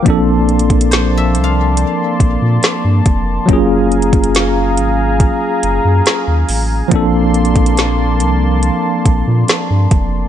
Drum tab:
HH |x---xxxxx---x---x---x---x---x---|x---xxxxx---x---x---x---x---o---|x---xxxxx---x---x---x---x---x---|
SD |--------o---------------o-------|--------o---------------o-------|--------o---------------o-------|
BD |o-----o-------------o-------o---|o-----o---------o---------------|o-----o-------------o-------o---|